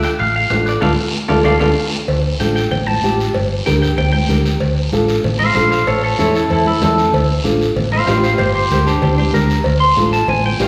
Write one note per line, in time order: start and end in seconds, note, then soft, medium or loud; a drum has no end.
0.03 0.10 G5 medium
0.03 high timbale medium
0.03 short guiro medium
0.19 0.45 A1 medium
0.19 0.34 F5 loud
0.19 high conga soft
0.19 high timbale medium
0.19 long guiro medium
0.36 0.68 F5 medium
0.50 0.76 A1 medium
0.50 0.73 D4 medium
0.50 0.73 F4 medium
0.50 0.73 A4 medium
0.50 high conga medium
0.50 high timbale medium
0.50 low timbale medium
0.50 short guiro medium
0.66 0.80 D5 medium
0.66 high timbale medium
0.66 short guiro medium
0.81 0.94 D2 medium
0.81 0.92 D4 medium
0.81 0.92 F4 medium
0.81 0.92 A4 medium
0.81 0.92 D5 medium
0.81 0.92 F5 medium
0.81 high conga medium
0.81 high timbale medium
0.81 long guiro medium
1.28 1.42 D2 medium
1.28 1.40 D4 medium
1.28 1.40 F4 medium
1.28 1.39 A4 medium
1.28 1.40 A4 medium
1.28 1.39 D5 medium
1.28 1.39 F5 medium
1.28 high conga medium
1.28 high timbale medium
1.28 long guiro medium
1.44 1.57 D2 medium
1.44 1.56 D4 medium
1.44 1.56 F4 medium
1.44 1.55 A4 medium
1.44 1.56 A4 medium
1.44 1.55 D5 medium
1.44 1.55 F5 medium
1.44 high conga medium
1.44 high timbale medium
1.44 long guiro loud
1.59 1.73 D2 medium
1.59 1.72 D4 medium
1.59 1.72 F4 medium
1.59 1.70 A4 medium
1.59 1.72 A4 medium
1.59 1.70 D5 medium
1.59 1.71 F5 medium
1.59 high conga medium
1.59 high timbale loud
1.59 long guiro loud
2.08 2.34 D2 loud
2.08 cowbell loud
2.08 long guiro medium
2.40 2.65 A1 medium
2.40 2.62 D4 medium
2.40 2.62 F4 medium
2.40 2.63 A4 medium
2.40 2.55 G5 medium
2.40 high conga medium
2.40 short guiro medium
2.56 2.70 G5 medium
2.56 short guiro medium
2.71 2.98 A1 loud
2.71 2.87 G5 medium
2.71 cowbell medium
2.71 low conga medium
2.71 long guiro medium
2.87 3.18 A5 medium
2.87 high conga medium
3.03 3.29 A1 medium
3.03 3.25 D4 medium
3.03 3.25 F4 medium
3.03 3.26 G4 medium
3.03 high conga medium
3.03 short guiro medium
3.20 short guiro medium
3.34 3.60 G1 loud
3.34 cowbell loud
3.34 long guiro medium
3.66 3.92 D2 medium
3.66 3.88 D4 medium
3.66 3.89 G4 medium
3.66 3.89 A#4 medium
3.66 3.81 G5 medium
3.66 high conga medium
3.66 short guiro medium
3.82 3.97 G5 medium
3.82 short guiro medium
3.98 4.23 D2 loud
3.98 4.11 G5 loud
3.98 cowbell medium
3.98 low conga medium
3.98 long guiro medium
4.12 4.44 G5 loud
4.12 high conga medium
4.29 4.55 D2 loud
4.29 4.51 D4 medium
4.29 4.51 G4 medium
4.29 4.52 A#4 medium
4.29 high conga medium
4.29 short guiro medium
4.46 short guiro medium
4.60 4.87 D2 loud
4.60 cowbell loud
4.60 long guiro medium
4.92 5.18 A1 medium
4.92 5.15 D4 medium
4.92 5.15 F4 medium
4.92 5.15 A4 loud
4.92 high conga medium
4.92 short guiro medium
5.08 short guiro medium
5.24 5.50 A1 loud
5.24 cowbell medium
5.24 low conga medium
5.24 long guiro medium
5.39 5.54 C5 medium
5.39 5.54 F5 medium
5.39 high conga medium
5.55 5.81 A#1 loud
5.55 5.78 D4 medium
5.55 5.78 F4 medium
5.55 5.78 A4 medium
5.55 5.70 C5 medium
5.55 5.70 F5 medium
5.55 high conga medium
5.55 short guiro medium
5.71 5.86 C5 medium
5.71 5.87 F5 medium
5.71 short guiro medium
5.87 6.13 A1 loud
5.87 6.02 A4 medium
5.87 6.03 C#5 medium
5.87 cowbell loud
5.87 long guiro medium
6.03 6.18 A4 medium
6.03 6.19 C#5 medium
6.18 6.44 E2 medium
6.18 6.41 C#4 medium
6.18 6.41 E4 medium
6.18 6.41 A4 medium
6.18 6.34 A4 medium
6.18 6.35 C#5 medium
6.18 high conga medium
6.18 short guiro medium
6.35 6.50 E4 medium
6.35 6.51 A4 medium
6.35 short guiro medium
6.50 6.76 E2 loud
6.50 6.66 E4 medium
6.50 6.66 A4 medium
6.50 cowbell medium
6.50 low conga medium
6.50 long guiro medium
6.66 6.81 E4 medium
6.66 6.82 A4 medium
6.66 high conga medium
6.82 7.08 E2 loud
6.82 7.04 C#4 medium
6.82 7.04 E4 medium
6.82 7.04 A4 medium
6.82 7.14 A4 loud
6.82 high conga medium
6.82 low conga medium
6.82 low timbale medium
6.82 short guiro medium
6.98 short guiro medium
7.13 7.38 D2 loud
7.13 cowbell loud
7.13 long guiro medium
7.44 7.70 A1 medium
7.44 7.67 D4 medium
7.44 7.67 F4 medium
7.44 7.67 A4 loud
7.44 high conga medium
7.44 short guiro medium
7.61 short guiro medium
7.76 8.02 A1 loud
7.76 cowbell medium
7.76 low conga medium
7.76 long guiro medium
7.92 8.05 C5 medium
7.92 8.06 F5 medium
7.92 high conga medium
8.06 8.33 A1 loud
8.06 8.29 D4 medium
8.06 8.30 F4 medium
8.06 8.30 G4 medium
8.06 8.22 C5 medium
8.06 8.23 F5 medium
8.06 high conga medium
8.06 low timbale medium
8.06 short guiro medium
8.24 8.38 C5 medium
8.24 8.39 F5 medium
8.24 short guiro medium
8.38 8.65 G1 loud
8.38 8.54 G4 medium
8.38 8.54 C5 medium
8.38 cowbell loud
8.38 low conga medium
8.38 long guiro medium
8.55 8.70 G4 medium
8.55 8.71 C5 medium
8.70 8.96 D2 medium
8.70 8.93 D4 medium
8.70 8.93 G4 medium
8.70 8.86 G4 medium
8.70 8.93 A#4 medium
8.70 8.87 C5 medium
8.70 high conga medium
8.70 short guiro medium
8.87 9.01 D4 medium
8.87 9.02 G4 medium
8.87 short guiro medium
9.02 9.28 D2 loud
9.02 9.17 D4 medium
9.02 9.18 G4 medium
9.02 cowbell medium
9.02 low conga medium
9.02 long guiro medium
9.18 9.33 D4 medium
9.18 9.34 G4 medium
9.18 high conga medium
9.33 9.59 D2 medium
9.33 9.55 D4 medium
9.33 9.56 G4 medium
9.33 9.56 A#4 medium
9.33 9.64 A#4 medium
9.33 high conga medium
9.33 short guiro medium
9.50 short guiro medium
9.64 9.91 D2 loud
9.64 cowbell loud
9.64 long guiro medium
9.80 10.11 C6 medium
9.96 10.22 A1 medium
9.96 10.18 D4 medium
9.96 10.19 F4 medium
9.96 10.19 A4 medium
9.96 high conga medium
9.96 short guiro medium
10.13 10.28 A5 medium
10.13 short guiro medium
10.28 10.53 A1 loud
10.28 10.44 G#5 medium
10.28 cowbell medium
10.28 low conga medium
10.28 long guiro medium
10.44 10.62 G5 medium
10.44 high conga medium
10.59 10.68 A1 loud
10.59 10.68 D4 medium
10.59 10.68 F4 medium
10.59 10.68 G4 medium
10.59 10.68 F5 medium
10.59 high conga medium
10.59 low timbale medium
10.59 short guiro medium